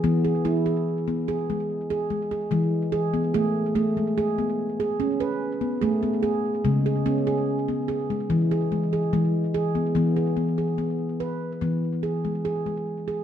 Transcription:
<<
  \new Staff \with { instrumentName = "Handpan" } { \time 4/4 \key e \major \tempo 4 = 73 b16 gis'16 b16 gis'8 b16 gis'16 gis8 gis'16 gis16 gis'16 gis8 gis'16 b16 | gis'8 gis'16 gis16 gis'16 b8 gis'16 cis'16 b'8 b16 gis'16 b16 gis'8 | gis16 gis'16 b16 gis'8 b16 gis'16 gis8 gis'16 gis16 gis'16 gis8 gis'16 b16 | b16 gis'16 b16 gis'16 b8 b'8 b8 gis'16 gis16 gis'16 gis8 gis'16 | }
  \new Staff \with { instrumentName = "Handpan" } { \clef bass \time 4/4 \key e \major e8 e'2 r8 e4 | a8 a2 r8 a4 | cis8 cis'4. e4 e4 | e2 e2 | }
>>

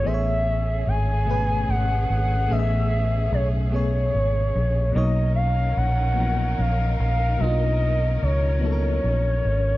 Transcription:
<<
  \new Staff \with { instrumentName = "Soft synth lead" } { \time 6/8 \key b \dorian \tempo 4. = 49 e''4 gis''4 fis''8 fis''8 | e''4 cis''8 cis''4. | dis''8 f''8 fis''4 f''8 f''8 | dis''4 cis''8 cis''4. | }
  \new Staff \with { instrumentName = "String section" } { \time 6/8 \key b \dorian << { <cis' gis'>2.~ | <cis' gis'>2. | <dis' ais'>2.~ | <dis' ais'>2. | } \\ { a2.~ | a2. | cis'2. | cis'2. | } >> }
  \new Staff \with { instrumentName = "FM electric piano" } { \time 6/8 \key b \dorian <a, a b gis' c'' cis''>4 r8 <b, a b gis' b'>4 r8 | <a, a b gis' dis'' e''>4 r8 <b, a b gis' cis''>4 r8 | <b, fis ais dis' cis''>4 r8 <f fis ais b dis'>4 r8 | <b, fis ais d' dis' f'>4 r8 <fis ais b dis' a' ais'>4 r8 | }
  \new Staff \with { instrumentName = "Fingered electric bass" } { \clef bass \time 6/8 \key b \dorian a,,4 gis,,4 gis,,8 gis,,8 | a,,4 b,,4 gis,,8 bes,,8 | b,,4 ais,,4 ais,,8 ais,,8 | b,,4 cis,4 ais,,8 gis,,8 | }
>>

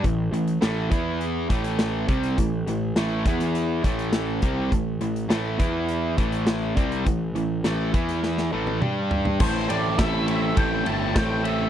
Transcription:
<<
  \new Staff \with { instrumentName = "Lead electric guitar" } { \time 4/4 \key a \minor \tempo 4 = 102 r1 | r1 | r1 | r1 |
c''8 d''8 e''8 e''8 g''8 a''8 g''8 e''8 | }
  \new Staff \with { instrumentName = "Distorted electric guitar" } { \time 4/4 \key a \minor <a, e>8 <a, e>8 <a, e a>8 <e b e'>4 <a, e a>4 <c g c'>8 | <a, e>8 <a, e>8 <a, e a>8 <e b e'>4 <a, e a>4 <c g c'>8 | <a, e>8 <a, e>8 <a, e a>8 <e b e'>4 <a, e a>4 <c g c'>8 | <a, e>8 <a, e>8 <a, e a>8 <e b e'>4 <a, e a>8 <g d' g'>4 |
<a, a c' e' a'>8 <a, a c' e' a'>8 <a, a c' e' a'>8 <a, a c' e' a'>8 <a, a c' e' a'>8 <a, a c' e' a'>8 <a, a c' e' a'>8 <a, a c' e' a'>8 | }
  \new Staff \with { instrumentName = "Picked electric bass" } { \clef bass \time 4/4 \key a \minor a,,8 a,,8 a,,8 e,4 a,,4 c,8 | a,,8 a,,8 a,,8 e,4 a,,4 c,8 | a,,8 a,,8 a,,8 e,4 a,,4 c,8 | a,,8 a,,8 a,,8 e,4 a,,8 g,4 |
a,,8 a,,8 a,,4 a,,8 g,,8 a,,4 | }
  \new DrumStaff \with { instrumentName = "Drums" } \drummode { \time 4/4 <hh bd>8 hh16 hh16 <hh sn>8 <hh bd>8 hh8 <hh bd>16 hh16 <hh sn>8 <hh bd>16 hh16 | <hh bd>8 hh8 <hh sn>8 <hh bd>16 <hh sn>16 hh8 <hh bd>16 hh16 <hh sn>8 <hh bd>8 | <hh bd>8 hh16 hh16 <hh sn>8 <hh bd>8 hh8 <hh bd>16 hh16 <hh sn>8 <hh bd>16 hh16 | <hh bd>8 hh8 <hh sn>8 <hh bd>16 <hh sn>16 sn16 sn8 tommh16 toml8 tomfh16 tomfh16 |
<cymc bd>8 cymr8 <bd cymr sn>8 cymr8 <bd cymr>8 cymr8 <bd cymr sn>8 cymr8 | }
>>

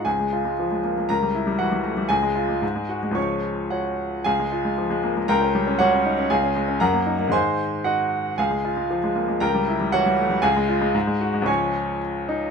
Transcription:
<<
  \new Staff \with { instrumentName = "Grand piano" } { \time 2/4 \key des \major \tempo 4 = 116 <aes' aes''>2 | <bes' bes''>4 <ges' ges''>4 | <aes' aes''>2 | <des'' des'''>4 <ges' des'' ges''>4 |
<aes' f'' aes''>2 | <bes' g'' bes''>4 <fis' des'' fis''>4 | <aes' f'' aes''>4 <bes' ges'' bes''>4 | <c'' aes'' c'''>4 <ges' ees'' ges''>4 |
<aes' f'' aes''>2 | <bes' g'' bes''>4 <ges' des'' ges''>4 | <aes' f'' aes''>2 | <des'' aes'' des'''>4 r8 ees'8 | }
  \new Staff \with { instrumentName = "Grand piano" } { \clef bass \time 2/4 \key des \major des,16 aes16 f'16 aes16 f16 aes16 bes16 aes16 | des,16 g16 fes'16 g16 fes16 g16 a16 g16 | des,16 aes16 f'16 aes16 aes,16 aes16 ges'16 aes16 | <des, f aes des'>2 |
des,16 aes16 f'16 aes16 f16 aes16 bes16 aes16 | des,16 des'16 g16 des'16 g16 des'16 ees'16 des'16 | des,16 des'16 aes16 des'16 ges,16 bes16 ees'16 bes16 | <aes, ees aes ees'>2 |
des,16 aes16 f'16 aes16 f16 aes16 bes16 aes16 | des,16 g16 fes'16 g16 fes16 g16 a16 g16 | des,16 aes16 f'16 aes16 aes,16 aes16 ges'16 aes16 | <des, f aes des'>2 | }
>>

